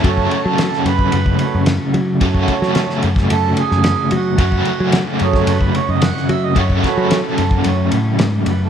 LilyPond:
<<
  \new Staff \with { instrumentName = "Harmonium" } { \time 4/4 \key fis \minor \tempo 4 = 110 a'8 a'4 b'4. r4 | r2 a'8 gis'4 fis'8~ | fis'4 r8 gis'16 a'16 b'8 cis''16 dis''16 fis''8 e''16 dis''16 | cis''8 b'8 a'4 r4. b'16 a'16 | }
  \new Staff \with { instrumentName = "Harmonium" } { \time 4/4 \key fis \minor <fis a cis'>8 r2 <fis a cis'>8 r4 | <fis a cis'>4. r2 r8 | r4. <fis a cis'>8 r2 | r8 <fis a cis'>8 r4 <fis a cis'>8 r4. | }
  \new Staff \with { instrumentName = "Overdriven electric guitar" } { \clef bass \time 4/4 \key fis \minor <fis, cis fis a cis' fis'>1 | <fis, cis fis a cis' fis'>1 | <fis, cis fis a cis' fis'>1 | <fis, cis fis a cis' fis'>1 | }
  \new Staff \with { instrumentName = "Picked electric bass" } { \clef bass \time 4/4 \key fis \minor fis,8 r16 fis8 r16 fis,8 fis,8 r16 fis,8 r16 fis8 | fis,8 r16 fis8 r16 fis,8 fis,8 r16 fis,8 r16 fis8 | fis,8 r16 fis8 r16 fis,8 fis,8 r16 fis,8 r16 fis8 | fis,8 r16 fis8 r16 fis,8 fis,8 a,8 gis,8 fis,8 | }
  \new DrumStaff \with { instrumentName = "Drums" } \drummode { \time 4/4 <bd cymr>16 bd16 cymr8 <cymr sn>16 sn16 cymr16 bd16 cymr16 bd16 cymr8 <cymr sn>8 cymr8 | <bd cymr>16 bd16 <bd cymr>16 sn16 <cymr sn>16 sn16 cymr16 <bd sn>16 cymr8 cymr16 sn16 <cymr sn>8 cymr8 | <bd cymr>16 bd16 cymr8 <cymr sn>8 cymr16 <bd sn>16 cymr16 bd16 cymr8 <cymr sn>16 sn16 cymr8 | <bd cymr>16 bd16 <bd cymr sn>8 <cymr sn>8 cymr16 bd16 cymr8 cymr8 <cymr sn>8 cymr8 | }
>>